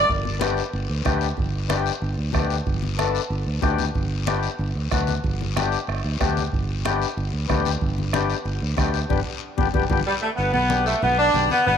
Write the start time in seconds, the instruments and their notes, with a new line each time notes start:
0.09 fingered electric bass G1, bombo low, high conga, long guiro
0.25 high conga
0.39 accordion B3 D4 G4, bombo rim, high conga, short guiro
0.57 short guiro
0.73 fingered electric bass G1, high conga, long guiro
0.89 fingered electric bass D2
1.04 fingered electric bass D2, accordion B3 D4 G4, bombo low, bombo rim, high conga, short guiro
1.21 short guiro
1.37 fingered electric bass G1, bombo low, high conga, long guiro
1.69 accordion B3 D4 G4, bombo rim, high conga, short guiro
1.86 short guiro
2.02 fingered electric bass G1, high conga, long guiro
2.17 fingered electric bass D2
2.33 fingered electric bass D2, accordion B3 D4 G4, bombo low, bombo rim, high conga, short guiro
2.50 short guiro
2.66 fingered electric bass G1, bombo low, high conga, long guiro
2.83 high conga
2.98 accordion B3 D4 A4, bombo rim, high conga, short guiro
3.15 short guiro
3.30 fingered electric bass G1, high conga, long guiro
3.46 fingered electric bass D2
3.61 fingered electric bass D2, accordion B3 D4 G4, bombo low, bombo rim, high conga, short guiro
3.79 high conga, short guiro
3.95 fingered electric bass G1, bombo low, high conga, long guiro
4.27 accordion B3 D4 G4, bombo rim, high conga, short guiro
4.43 short guiro
4.59 fingered electric bass G1, high conga, long guiro
4.75 fingered electric bass D2
4.91 fingered electric bass D2, accordion B3 D4 F#4, bombo low, bombo rim, high conga, short guiro
5.07 high conga, short guiro
5.24 fingered electric bass G1, bombo low, high conga, long guiro
5.41 high conga
5.55 accordion B3 D4 G4, bombo rim, high conga, short guiro
5.72 short guiro
5.87 fingered electric bass G1, bombo rim, high conga, long guiro
6.04 fingered electric bass D2
6.20 fingered electric bass D2, accordion B3 D4 G4, bombo low, bombo rim, high conga, short guiro
6.37 high conga, short guiro
6.52 fingered electric bass G1, bombo low, high conga, long guiro
6.85 accordion B3 D4 G4, bombo rim, high conga, short guiro
7.02 short guiro
7.17 fingered electric bass G1, high conga, long guiro
7.33 fingered electric bass D2
7.48 fingered electric bass D2, accordion B3 D4 G4, bombo low, bombo rim, high conga, short guiro
7.65 high conga, short guiro
7.81 fingered electric bass G1, bombo low, high conga, long guiro
7.98 high conga
8.13 accordion B3 D4 G4, bombo rim, high conga, short guiro
8.30 short guiro
8.45 fingered electric bass G1, high conga, long guiro
8.62 fingered electric bass D2
8.77 fingered electric bass D2, accordion B3 D4 G4, bombo low, bombo rim, high conga, short guiro
8.94 short guiro
9.09 fingered electric bass G1, accordion B3 D4 G4, bombo low, high conga, long guiro
9.58 fingered electric bass G1, accordion B3 D4 G4, bombo low, high conga, long guiro
9.74 fingered electric bass G1, accordion B3 D4 G4, bombo low, high conga, long guiro
9.90 fingered electric bass G1, accordion B3 D4 G4, bombo low, high conga, long guiro
10.06 saxophone section G3
10.22 saxophone section A3
10.36 fingered electric bass G1, saxophone section B3, high conga, long guiro
10.53 fingered electric bass B1, saxophone section B3, high conga
10.70 accordion B3 D4 G4, high conga, short guiro
10.85 saxophone section A3, short guiro
11.02 fingered electric bass B1, saxophone section B3, high conga, low conga, long guiro
11.18 saxophone section D4
11.34 fingered electric bass B1, accordion B3 D4 G4, high conga, short guiro
11.50 saxophone section B3, high conga, short guiro
11.67 fingered electric bass G1, saxophone section B3, high conga, low conga, long guiro